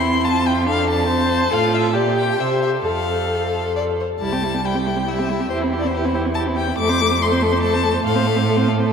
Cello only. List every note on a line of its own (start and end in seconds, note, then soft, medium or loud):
0.00 0.26 E2 soft
0.24 1.52 F2 medium
1.52 1.97 A2 medium
1.95 2.39 A#2 soft
2.40 2.85 C3 soft
2.86 3.99 F2 soft
4.21 5.47 C2 soft
5.50 6.76 E2 soft
6.79 8.02 F2 medium
8.05 8.93 A2 medium